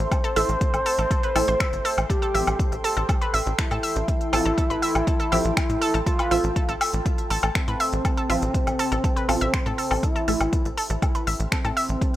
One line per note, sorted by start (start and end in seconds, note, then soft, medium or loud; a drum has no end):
0.00 9.99 A4 medium
0.00 2.00 C5 loud
0.00 2.06 E5 medium
0.00 9.99 G5 medium
0.00 9.99 C6 medium
0.11 0.19 A4 medium
0.11 kick loud
0.11 closed hi-hat medium
0.11 low woodblock medium
0.24 0.28 A4 loud
0.24 closed hi-hat soft
0.36 0.44 A1 loud
0.36 0.50 A3 medium
0.36 0.50 E4 medium
0.36 0.50 A4 loud
0.36 0.44 E5 medium
0.36 open hi-hat loud
0.49 0.57 A1 medium
0.49 closed hi-hat soft
0.61 kick loud
0.61 closed hi-hat medium
0.74 0.81 A1 medium
0.74 closed hi-hat soft
0.74 low woodblock medium
0.86 0.97 A4 loud
0.86 open hi-hat loud
0.98 1.06 A1 medium
0.98 1.03 A4 medium
0.98 closed hi-hat soft
1.11 1.18 A4 medium
1.11 kick loud
1.11 closed hi-hat medium
1.23 1.34 B4 medium
1.23 closed hi-hat soft
1.35 1.44 A1 loud
1.35 2.08 A3 medium
1.35 2.08 E4 medium
1.35 2.08 A4 loud
1.35 1.43 E5 medium
1.35 open hi-hat loud
1.35 low woodblock medium
1.48 1.56 A1 medium
1.48 1.55 C5 medium
1.48 closed hi-hat soft
1.60 1.71 E5 medium
1.60 finger snap loud
1.60 kick loud
1.60 closed hi-hat medium
1.73 1.81 G1 medium
1.73 closed hi-hat soft
1.85 1.89 A4 loud
1.85 open hi-hat loud
1.98 2.05 A1 medium
1.98 closed hi-hat soft
1.98 low woodblock medium
2.10 2.75 G4 loud
2.10 2.17 A4 medium
2.10 9.99 A5 medium
2.10 kick loud
2.10 closed hi-hat medium
2.22 2.27 A4 loud
2.22 closed hi-hat soft
2.34 2.43 A1 medium
2.34 4.30 F3 medium
2.34 4.30 C4 medium
2.34 4.30 G4 medium
2.34 2.42 E5 medium
2.34 open hi-hat loud
2.47 2.55 A1 medium
2.47 closed hi-hat soft
2.47 low woodblock medium
2.59 kick loud
2.59 closed hi-hat medium
2.72 2.80 A1 medium
2.72 closed hi-hat soft
2.84 2.95 A4 loud
2.84 open hi-hat loud
2.97 3.05 A1 medium
2.97 3.01 A4 medium
2.97 closed hi-hat soft
3.09 3.16 A4 medium
3.09 kick loud
3.09 closed hi-hat medium
3.09 low woodblock medium
3.21 3.32 B4 medium
3.21 closed hi-hat soft
3.34 3.42 A1 medium
3.34 3.41 E5 medium
3.34 open hi-hat loud
3.46 3.54 A1 medium
3.46 closed hi-hat soft
3.58 5.97 E4 loud
3.58 3.66 A4 medium
3.58 finger snap loud
3.58 kick loud
3.58 closed hi-hat medium
3.71 3.79 A2 medium
3.71 3.75 A4 loud
3.71 closed hi-hat soft
3.71 low woodblock medium
3.83 3.91 E5 medium
3.83 open hi-hat loud
3.96 4.04 A1 medium
3.96 closed hi-hat soft
4.08 kick loud
4.08 closed hi-hat medium
4.21 closed hi-hat soft
4.33 4.41 A1 loud
4.33 4.46 F3 medium
4.33 4.46 C4 medium
4.33 4.46 F4 loud
4.33 4.44 A4 loud
4.33 open hi-hat loud
4.33 low woodblock medium
4.46 4.53 A1 medium
4.46 4.50 A4 medium
4.46 closed hi-hat soft
4.58 4.65 A4 medium
4.58 kick loud
4.58 closed hi-hat medium
4.70 4.78 A1 medium
4.70 4.81 B4 medium
4.70 closed hi-hat soft
4.82 4.90 E5 medium
4.82 open hi-hat loud
4.95 5.03 A1 medium
4.95 closed hi-hat soft
4.95 low woodblock medium
5.07 5.15 A4 medium
5.07 kick loud
5.07 closed hi-hat medium
5.20 5.24 A4 loud
5.20 closed hi-hat soft
5.32 5.40 A1 medium
5.32 6.28 F3 medium
5.32 6.28 C4 medium
5.32 6.28 G4 loud
5.32 5.39 E5 medium
5.32 open hi-hat loud
5.45 5.53 A1 medium
5.45 closed hi-hat soft
5.57 finger snap loud
5.57 kick loud
5.57 closed hi-hat medium
5.57 low woodblock medium
5.69 5.77 A2 medium
5.69 closed hi-hat soft
5.81 5.93 A4 loud
5.81 open hi-hat loud
5.94 6.02 A1 medium
5.94 5.98 A4 medium
5.94 closed hi-hat soft
6.06 6.71 F4 loud
6.06 6.14 A4 medium
6.06 kick loud
6.06 closed hi-hat medium
6.19 6.30 B4 medium
6.19 closed hi-hat soft
6.19 low woodblock medium
6.31 6.39 A1 loud
6.31 8.27 F3 medium
6.31 8.27 C4 medium
6.31 8.27 F4 medium
6.31 6.39 E5 medium
6.31 open hi-hat loud
6.44 6.52 A1 medium
6.44 closed hi-hat soft
6.56 6.63 A4 medium
6.56 kick loud
6.56 closed hi-hat medium
6.69 6.76 A1 medium
6.69 6.73 A4 loud
6.69 closed hi-hat soft
6.81 6.88 E5 medium
6.81 open hi-hat loud
6.81 low woodblock medium
6.93 7.01 A1 medium
6.93 closed hi-hat soft
7.06 kick loud
7.06 closed hi-hat medium
7.18 closed hi-hat soft
7.30 7.39 A1 medium
7.30 7.41 A4 loud
7.30 open hi-hat loud
7.43 7.51 A1 medium
7.43 7.47 A4 medium
7.43 closed hi-hat soft
7.43 low woodblock medium
7.55 10.04 C4 loud
7.55 7.63 A4 medium
7.55 finger snap loud
7.55 kick loud
7.55 closed hi-hat medium
7.68 7.76 A2 medium
7.68 7.78 B4 medium
7.68 closed hi-hat soft
7.80 7.87 E5 medium
7.80 open hi-hat loud
7.93 8.00 A1 medium
7.93 closed hi-hat soft
8.05 8.12 A4 medium
8.05 kick loud
8.05 closed hi-hat medium
8.05 low woodblock medium
8.17 8.22 A4 loud
8.17 closed hi-hat soft
8.30 8.38 A1 loud
8.30 8.43 F3 medium
8.30 8.43 C4 medium
8.30 8.43 F4 loud
8.30 8.37 E5 medium
8.30 open hi-hat loud
8.42 8.50 A1 medium
8.42 closed hi-hat soft
8.54 kick loud
8.54 closed hi-hat medium
8.67 8.75 A1 medium
8.67 closed hi-hat soft
8.67 low woodblock medium
8.79 8.90 A4 loud
8.79 open hi-hat loud
8.92 9.00 A1 medium
8.92 8.96 A4 medium
8.92 closed hi-hat soft
9.04 9.11 A4 medium
9.04 kick loud
9.04 closed hi-hat medium
9.16 9.27 B4 medium
9.16 closed hi-hat soft
9.29 9.37 A1 medium
9.29 10.02 F3 medium
9.29 10.02 C4 medium
9.29 10.02 F4 loud
9.29 9.40 A4 medium
9.29 open hi-hat loud
9.29 low woodblock medium
9.41 9.49 A1 medium
9.41 9.48 E5 loud
9.41 closed hi-hat soft
9.54 9.58 C5 loud
9.54 finger snap loud
9.54 kick loud
9.54 closed hi-hat medium
9.66 9.74 A2 medium
9.66 9.73 A4 loud
9.66 closed hi-hat soft
9.78 9.89 A4 medium
9.78 open hi-hat loud
9.91 9.99 A1 medium
9.91 9.98 A4 medium
9.91 open hi-hat medium
9.91 low woodblock medium
10.03 10.68 E4 loud
10.03 10.10 A4 medium
10.03 12.16 A4 medium
10.03 12.16 E5 medium
10.03 12.16 G5 medium
10.03 12.16 C6 medium
10.03 kick loud
10.03 closed hi-hat medium
10.16 10.20 A4 loud
10.16 closed hi-hat soft
10.28 10.36 A1 loud
10.28 12.16 A3 medium
10.28 12.16 E4 medium
10.28 12.16 A4 medium
10.28 10.35 E5 medium
10.28 open hi-hat loud
10.40 10.48 A1 medium
10.40 closed hi-hat soft
10.40 low woodblock medium
10.53 kick loud
10.53 closed hi-hat medium
10.65 10.73 A1 medium
10.65 closed hi-hat soft
10.77 10.88 A4 loud
10.77 open hi-hat loud
10.90 10.98 A1 medium
10.90 10.94 A4 medium
10.90 closed hi-hat soft
11.02 11.10 A4 medium
11.02 kick loud
11.02 closed hi-hat medium
11.02 low woodblock medium
11.15 11.26 B4 medium
11.15 closed hi-hat soft
11.27 11.35 A1 medium
11.27 11.34 E5 medium
11.27 open hi-hat loud
11.40 11.48 A1 medium
11.40 closed hi-hat soft
11.52 12.16 C4 loud
11.52 11.59 A4 medium
11.52 finger snap loud
11.52 kick loud
11.52 closed hi-hat medium
11.65 11.72 A2 medium
11.65 11.69 A4 loud
11.65 closed hi-hat soft
11.65 low woodblock medium
11.77 11.84 E5 medium
11.77 open hi-hat loud
11.89 11.97 A1 medium
11.89 closed hi-hat soft
12.01 kick loud
12.01 closed hi-hat medium